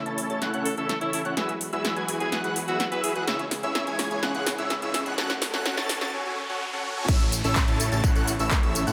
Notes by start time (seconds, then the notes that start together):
Already playing: C#3 E3 A3 E4 A4, riser
0.06 A1 C#4 E4 A4 C#5 A5 A6, closed hi-hat
0.18 open hi-hat
0.30 A1 C#4 E4 A4 C#5 A5 A6, closed hi-hat
0.42 A1 C#4 E4 A4 C#5 F#5 F#6, snare, closed hi-hat
0.54 A1 C#4 E4 A4 C#5 F#5 F#6, closed hi-hat
0.66 A4, open hi-hat
0.77 A1 C#4 E4 A4 C#5 E5 E6, closed hi-hat
0.89 A4, snare, closed hi-hat
1.01 A1 C#4 E4 A4 C#5 E5 E6, closed hi-hat
1.13 E4, open hi-hat
1.25 A2 C#4 E4 A4 C#5 F#5 F#6, closed hi-hat
1.37 E2 F#3 G#3 B3 E4 F#4 G#4 B4 E5 E6, snare, closed hi-hat
1.49 closed hi-hat
1.61 open hi-hat
1.73 E2 E4 F#4 G#4 B4 E5 E6, closed hi-hat
1.85 snare, closed hi-hat
1.96 E2 E4 F#4 G#4 B4 G#5 G#6, closed hi-hat
2.08 open hi-hat
2.20 E2 E4 F#4 G#4 B4 G#5 G#6, closed hi-hat
2.32 E2 E4 F#4 G#4 B4 F#5 F#6, snare, closed hi-hat
2.44 E2 E4 F#4 G#4 B4 F#5 F#6, closed hi-hat
2.56 open hi-hat
2.68 E2 E4 F#4 G#4 B4 E5 E6, closed hi-hat
2.80 snare, closed hi-hat
2.92 E2 E4 F#4 G#4 B4 E5 E6, closed hi-hat
3.04 G#4, open hi-hat
3.15 E2 E4 F#4 G#4 B4 F#5 F#6, closed hi-hat
3.27 C#2 C#3 G#3 C#4 E4 G#4 C#5 E5 E6, snare, closed hi-hat
3.39 closed hi-hat
3.51 snare, open hi-hat
3.63 C#2 C#4 E4 G#4 C#5 E5 E6, closed hi-hat
3.75 snare, closed hi-hat
3.87 C#2 C#4 E4 G#4 C#5 G#5 G#6, closed hi-hat
3.99 snare, open hi-hat
4.11 C#2 C#4 E4 G#4 C#5 G#5 G#6, closed hi-hat
4.23 C#2 C#4 E4 G#4 C#5 F#5 F#6, snare, closed hi-hat
4.35 C#2 C#4 E4 G#4 C#5 F#5 F#6, closed hi-hat
4.46 snare, open hi-hat
4.58 C#2 C#4 E4 G#4 C#5 E5 E6, closed hi-hat
4.70 snare, closed hi-hat
4.82 C#2 C#4 E4 G#4 C#5 E5 E6, closed hi-hat
4.94 snare, open hi-hat
5.06 C#2 C#4 E4 G#4 C#5 F#5 F#6, closed hi-hat
5.18 F#1 F#3 A3 C#4 F#4 A4 C#5 F#5 F#6, snare, closed hi-hat
5.30 snare, closed hi-hat
5.42 snare, open hi-hat
5.54 F#1 C#4 F#4 A4 C#5 F#5 F#6, snare, closed hi-hat
5.66 snare, closed hi-hat
5.77 F#1 C#4 F#4 A4 C#5 A5 A6, snare, closed hi-hat
5.89 snare, open hi-hat
6.01 F#1 C#4 F#4 A4 C#5 A5 A6, snare, closed hi-hat
6.13 C#4 F#4 A4 C#5 G#5
6.25 C#4 F#4 A4 C#5 G#5
6.49 C#4 F#4 A4 C#5 F#5
6.73 C#4 F#4 A4 C#5 F#5
6.97 C#4 F#4 A4 C#5 G#5
7.08 A1 C#3 E3 A3 C#4 E4 A4 C#5 E5 E6, kick, closed hi-hat, tambourine, crash, downlifter
7.20 closed hi-hat
7.32 open hi-hat, tambourine
7.44 A1 C#4 E4 A4 C#5 E5 E6, closed hi-hat, tambourine
7.56 kick, clap, closed hi-hat, tambourine
7.68 A1 C#4 E4 A4 C#5 A5 A6, closed hi-hat
7.80 open hi-hat, tambourine
7.92 A1 C#4 E4 A4 C#5 A5 A6, closed hi-hat, tambourine
8.04 A1 C#4 E4 A4 C#5 F#5 F#6, kick, closed hi-hat, tambourine
8.16 A1 C#4 E4 A4 C#5 F#5 F#6, closed hi-hat, tambourine
8.28 open hi-hat, tambourine
8.39 A1 C#4 E4 A4 C#5 E5 E6, closed hi-hat, tambourine
8.51 kick, clap, closed hi-hat, tambourine
8.63 A1 C#4 E4 A4 C#5 E5 E6, closed hi-hat
8.75 open hi-hat, tambourine
8.87 A2 C#4 E4 A4 C#5 F#5 F#6, closed hi-hat, tambourine